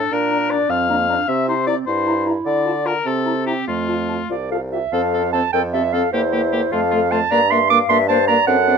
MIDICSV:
0, 0, Header, 1, 6, 480
1, 0, Start_track
1, 0, Key_signature, -1, "major"
1, 0, Tempo, 390117
1, 141, Time_signature, 6, 3, 24, 8
1, 3023, Tempo, 409277
1, 6863, Tempo, 391901
1, 10595, End_track
2, 0, Start_track
2, 0, Title_t, "Clarinet"
2, 0, Program_c, 0, 71
2, 0, Note_on_c, 0, 62, 48
2, 139, Note_off_c, 0, 62, 0
2, 146, Note_on_c, 0, 62, 60
2, 853, Note_on_c, 0, 60, 52
2, 871, Note_off_c, 0, 62, 0
2, 1092, Note_off_c, 0, 60, 0
2, 1097, Note_on_c, 0, 58, 49
2, 1333, Note_on_c, 0, 62, 53
2, 1352, Note_off_c, 0, 58, 0
2, 1569, Note_off_c, 0, 62, 0
2, 1577, Note_on_c, 0, 60, 53
2, 2285, Note_off_c, 0, 60, 0
2, 2303, Note_on_c, 0, 64, 65
2, 3373, Note_off_c, 0, 64, 0
2, 3727, Note_on_c, 0, 60, 56
2, 4454, Note_on_c, 0, 57, 46
2, 4472, Note_off_c, 0, 60, 0
2, 5183, Note_off_c, 0, 57, 0
2, 5190, Note_on_c, 0, 74, 58
2, 5416, Note_off_c, 0, 74, 0
2, 5439, Note_on_c, 0, 77, 52
2, 5548, Note_off_c, 0, 77, 0
2, 5679, Note_on_c, 0, 76, 59
2, 5922, Note_on_c, 0, 77, 61
2, 5940, Note_off_c, 0, 76, 0
2, 6385, Note_off_c, 0, 77, 0
2, 6392, Note_on_c, 0, 81, 78
2, 6621, Note_off_c, 0, 81, 0
2, 6628, Note_on_c, 0, 79, 69
2, 6734, Note_off_c, 0, 79, 0
2, 6862, Note_on_c, 0, 76, 67
2, 7106, Note_on_c, 0, 77, 67
2, 7125, Note_off_c, 0, 76, 0
2, 7338, Note_off_c, 0, 77, 0
2, 7345, Note_on_c, 0, 72, 68
2, 8080, Note_on_c, 0, 77, 70
2, 8098, Note_off_c, 0, 72, 0
2, 8561, Note_on_c, 0, 81, 82
2, 8579, Note_off_c, 0, 77, 0
2, 8805, Note_on_c, 0, 82, 83
2, 8823, Note_off_c, 0, 81, 0
2, 9041, Note_on_c, 0, 84, 85
2, 9060, Note_off_c, 0, 82, 0
2, 9271, Note_off_c, 0, 84, 0
2, 9278, Note_on_c, 0, 86, 92
2, 9383, Note_off_c, 0, 86, 0
2, 9513, Note_on_c, 0, 84, 80
2, 9619, Note_off_c, 0, 84, 0
2, 9744, Note_on_c, 0, 81, 80
2, 9975, Note_off_c, 0, 81, 0
2, 9982, Note_on_c, 0, 82, 90
2, 10212, Note_off_c, 0, 82, 0
2, 10220, Note_on_c, 0, 78, 87
2, 10595, Note_off_c, 0, 78, 0
2, 10595, End_track
3, 0, Start_track
3, 0, Title_t, "Flute"
3, 0, Program_c, 1, 73
3, 387, Note_on_c, 1, 82, 42
3, 461, Note_off_c, 1, 82, 0
3, 631, Note_on_c, 1, 82, 43
3, 705, Note_off_c, 1, 82, 0
3, 1102, Note_on_c, 1, 82, 47
3, 1176, Note_off_c, 1, 82, 0
3, 1343, Note_on_c, 1, 82, 45
3, 1417, Note_off_c, 1, 82, 0
3, 1826, Note_on_c, 1, 82, 45
3, 1900, Note_off_c, 1, 82, 0
3, 2065, Note_on_c, 1, 82, 44
3, 2139, Note_off_c, 1, 82, 0
3, 2547, Note_on_c, 1, 82, 49
3, 2621, Note_off_c, 1, 82, 0
3, 2787, Note_on_c, 1, 82, 45
3, 2861, Note_off_c, 1, 82, 0
3, 3257, Note_on_c, 1, 81, 44
3, 3327, Note_off_c, 1, 81, 0
3, 3492, Note_on_c, 1, 81, 44
3, 3563, Note_off_c, 1, 81, 0
3, 3966, Note_on_c, 1, 82, 47
3, 4037, Note_off_c, 1, 82, 0
3, 4206, Note_on_c, 1, 82, 42
3, 4276, Note_off_c, 1, 82, 0
3, 4696, Note_on_c, 1, 81, 39
3, 4766, Note_off_c, 1, 81, 0
3, 4935, Note_on_c, 1, 81, 32
3, 5005, Note_off_c, 1, 81, 0
3, 5176, Note_on_c, 1, 65, 55
3, 5246, Note_off_c, 1, 65, 0
3, 5425, Note_on_c, 1, 69, 51
3, 5495, Note_off_c, 1, 69, 0
3, 5671, Note_on_c, 1, 67, 47
3, 5742, Note_off_c, 1, 67, 0
3, 5922, Note_on_c, 1, 69, 56
3, 6384, Note_off_c, 1, 69, 0
3, 6399, Note_on_c, 1, 72, 47
3, 6470, Note_off_c, 1, 72, 0
3, 6633, Note_on_c, 1, 70, 68
3, 6704, Note_off_c, 1, 70, 0
3, 6867, Note_on_c, 1, 67, 52
3, 6940, Note_off_c, 1, 67, 0
3, 7112, Note_on_c, 1, 69, 60
3, 7338, Note_off_c, 1, 69, 0
3, 7346, Note_on_c, 1, 64, 60
3, 8079, Note_on_c, 1, 69, 69
3, 8097, Note_off_c, 1, 64, 0
3, 8552, Note_off_c, 1, 69, 0
3, 8560, Note_on_c, 1, 72, 61
3, 8633, Note_off_c, 1, 72, 0
3, 8797, Note_on_c, 1, 74, 80
3, 9032, Note_off_c, 1, 74, 0
3, 9040, Note_on_c, 1, 76, 69
3, 9281, Note_on_c, 1, 77, 70
3, 9299, Note_off_c, 1, 76, 0
3, 9514, Note_on_c, 1, 76, 87
3, 9532, Note_off_c, 1, 77, 0
3, 9748, Note_off_c, 1, 76, 0
3, 9754, Note_on_c, 1, 72, 76
3, 9984, Note_on_c, 1, 74, 77
3, 10003, Note_off_c, 1, 72, 0
3, 10231, Note_on_c, 1, 69, 78
3, 10249, Note_off_c, 1, 74, 0
3, 10595, Note_off_c, 1, 69, 0
3, 10595, End_track
4, 0, Start_track
4, 0, Title_t, "Oboe"
4, 0, Program_c, 2, 68
4, 0, Note_on_c, 2, 69, 63
4, 147, Note_on_c, 2, 70, 67
4, 165, Note_off_c, 2, 69, 0
4, 617, Note_on_c, 2, 74, 75
4, 635, Note_off_c, 2, 70, 0
4, 861, Note_on_c, 2, 77, 76
4, 879, Note_off_c, 2, 74, 0
4, 1579, Note_on_c, 2, 76, 85
4, 1597, Note_off_c, 2, 77, 0
4, 1818, Note_off_c, 2, 76, 0
4, 1826, Note_on_c, 2, 72, 70
4, 2045, Note_off_c, 2, 72, 0
4, 2052, Note_on_c, 2, 74, 74
4, 2162, Note_off_c, 2, 74, 0
4, 2295, Note_on_c, 2, 72, 67
4, 2770, Note_off_c, 2, 72, 0
4, 3024, Note_on_c, 2, 74, 72
4, 3496, Note_on_c, 2, 70, 74
4, 3513, Note_off_c, 2, 74, 0
4, 3734, Note_on_c, 2, 69, 64
4, 3752, Note_off_c, 2, 70, 0
4, 4196, Note_off_c, 2, 69, 0
4, 4203, Note_on_c, 2, 67, 59
4, 4441, Note_off_c, 2, 67, 0
4, 4448, Note_on_c, 2, 65, 57
4, 5171, Note_off_c, 2, 65, 0
4, 5921, Note_on_c, 2, 69, 51
4, 6028, Note_off_c, 2, 69, 0
4, 6164, Note_on_c, 2, 69, 45
4, 6269, Note_off_c, 2, 69, 0
4, 6398, Note_on_c, 2, 69, 42
4, 6503, Note_off_c, 2, 69, 0
4, 6636, Note_on_c, 2, 69, 49
4, 6740, Note_off_c, 2, 69, 0
4, 6872, Note_on_c, 2, 69, 41
4, 6979, Note_off_c, 2, 69, 0
4, 7106, Note_on_c, 2, 69, 50
4, 7215, Note_off_c, 2, 69, 0
4, 7354, Note_on_c, 2, 67, 50
4, 7461, Note_off_c, 2, 67, 0
4, 7587, Note_on_c, 2, 67, 45
4, 7697, Note_off_c, 2, 67, 0
4, 7829, Note_on_c, 2, 67, 47
4, 7939, Note_off_c, 2, 67, 0
4, 8073, Note_on_c, 2, 65, 51
4, 8182, Note_off_c, 2, 65, 0
4, 8304, Note_on_c, 2, 65, 52
4, 8415, Note_off_c, 2, 65, 0
4, 8549, Note_on_c, 2, 65, 51
4, 8659, Note_off_c, 2, 65, 0
4, 8791, Note_on_c, 2, 62, 54
4, 8900, Note_off_c, 2, 62, 0
4, 9025, Note_on_c, 2, 62, 47
4, 9134, Note_off_c, 2, 62, 0
4, 9267, Note_on_c, 2, 62, 53
4, 9375, Note_off_c, 2, 62, 0
4, 9507, Note_on_c, 2, 62, 58
4, 9614, Note_off_c, 2, 62, 0
4, 9748, Note_on_c, 2, 62, 55
4, 9855, Note_off_c, 2, 62, 0
4, 9985, Note_on_c, 2, 62, 61
4, 10093, Note_off_c, 2, 62, 0
4, 10233, Note_on_c, 2, 62, 59
4, 10339, Note_off_c, 2, 62, 0
4, 10467, Note_on_c, 2, 62, 56
4, 10573, Note_off_c, 2, 62, 0
4, 10595, End_track
5, 0, Start_track
5, 0, Title_t, "French horn"
5, 0, Program_c, 3, 60
5, 384, Note_on_c, 3, 62, 44
5, 467, Note_off_c, 3, 62, 0
5, 622, Note_on_c, 3, 62, 48
5, 706, Note_off_c, 3, 62, 0
5, 1099, Note_on_c, 3, 62, 49
5, 1185, Note_off_c, 3, 62, 0
5, 1341, Note_on_c, 3, 62, 44
5, 1427, Note_off_c, 3, 62, 0
5, 1818, Note_on_c, 3, 64, 48
5, 1905, Note_off_c, 3, 64, 0
5, 2058, Note_on_c, 3, 64, 47
5, 2145, Note_off_c, 3, 64, 0
5, 2546, Note_on_c, 3, 64, 47
5, 2631, Note_off_c, 3, 64, 0
5, 2787, Note_on_c, 3, 64, 46
5, 2873, Note_off_c, 3, 64, 0
5, 3257, Note_on_c, 3, 65, 48
5, 3341, Note_off_c, 3, 65, 0
5, 3488, Note_on_c, 3, 65, 50
5, 3574, Note_off_c, 3, 65, 0
5, 3963, Note_on_c, 3, 64, 45
5, 4051, Note_off_c, 3, 64, 0
5, 4202, Note_on_c, 3, 64, 39
5, 4291, Note_off_c, 3, 64, 0
5, 4698, Note_on_c, 3, 65, 40
5, 4787, Note_off_c, 3, 65, 0
5, 4947, Note_on_c, 3, 65, 43
5, 5034, Note_off_c, 3, 65, 0
5, 5436, Note_on_c, 3, 65, 41
5, 5523, Note_off_c, 3, 65, 0
5, 5684, Note_on_c, 3, 65, 37
5, 5771, Note_off_c, 3, 65, 0
5, 5924, Note_on_c, 3, 60, 46
5, 6030, Note_off_c, 3, 60, 0
5, 6164, Note_on_c, 3, 60, 44
5, 6268, Note_off_c, 3, 60, 0
5, 6400, Note_on_c, 3, 60, 47
5, 6504, Note_off_c, 3, 60, 0
5, 6631, Note_on_c, 3, 60, 50
5, 6736, Note_off_c, 3, 60, 0
5, 6868, Note_on_c, 3, 60, 46
5, 6976, Note_off_c, 3, 60, 0
5, 7110, Note_on_c, 3, 60, 43
5, 7218, Note_off_c, 3, 60, 0
5, 7360, Note_on_c, 3, 58, 48
5, 7466, Note_off_c, 3, 58, 0
5, 7601, Note_on_c, 3, 58, 47
5, 7707, Note_off_c, 3, 58, 0
5, 7843, Note_on_c, 3, 58, 47
5, 7950, Note_off_c, 3, 58, 0
5, 8086, Note_on_c, 3, 57, 46
5, 8192, Note_off_c, 3, 57, 0
5, 8327, Note_on_c, 3, 57, 51
5, 8433, Note_off_c, 3, 57, 0
5, 8568, Note_on_c, 3, 57, 47
5, 8674, Note_off_c, 3, 57, 0
5, 8804, Note_on_c, 3, 58, 52
5, 8910, Note_off_c, 3, 58, 0
5, 9048, Note_on_c, 3, 58, 56
5, 9152, Note_off_c, 3, 58, 0
5, 9282, Note_on_c, 3, 58, 58
5, 9386, Note_off_c, 3, 58, 0
5, 9517, Note_on_c, 3, 58, 58
5, 9622, Note_off_c, 3, 58, 0
5, 9755, Note_on_c, 3, 58, 56
5, 9861, Note_off_c, 3, 58, 0
5, 9995, Note_on_c, 3, 58, 59
5, 10101, Note_off_c, 3, 58, 0
5, 10231, Note_on_c, 3, 60, 60
5, 10337, Note_off_c, 3, 60, 0
5, 10470, Note_on_c, 3, 60, 58
5, 10575, Note_off_c, 3, 60, 0
5, 10595, End_track
6, 0, Start_track
6, 0, Title_t, "Bassoon"
6, 0, Program_c, 4, 70
6, 148, Note_on_c, 4, 46, 55
6, 734, Note_off_c, 4, 46, 0
6, 854, Note_on_c, 4, 41, 59
6, 1456, Note_off_c, 4, 41, 0
6, 1580, Note_on_c, 4, 48, 66
6, 2180, Note_off_c, 4, 48, 0
6, 2299, Note_on_c, 4, 43, 57
6, 2902, Note_off_c, 4, 43, 0
6, 3025, Note_on_c, 4, 50, 68
6, 3610, Note_off_c, 4, 50, 0
6, 3728, Note_on_c, 4, 48, 54
6, 4331, Note_off_c, 4, 48, 0
6, 4454, Note_on_c, 4, 41, 52
6, 5067, Note_off_c, 4, 41, 0
6, 5184, Note_on_c, 4, 36, 48
6, 5799, Note_off_c, 4, 36, 0
6, 5916, Note_on_c, 4, 41, 59
6, 6542, Note_off_c, 4, 41, 0
6, 6632, Note_on_c, 4, 41, 58
6, 7263, Note_off_c, 4, 41, 0
6, 7351, Note_on_c, 4, 40, 61
6, 7991, Note_off_c, 4, 40, 0
6, 8077, Note_on_c, 4, 41, 60
6, 8714, Note_off_c, 4, 41, 0
6, 8799, Note_on_c, 4, 43, 68
6, 9426, Note_off_c, 4, 43, 0
6, 9506, Note_on_c, 4, 43, 80
6, 10139, Note_off_c, 4, 43, 0
6, 10224, Note_on_c, 4, 42, 76
6, 10595, Note_off_c, 4, 42, 0
6, 10595, End_track
0, 0, End_of_file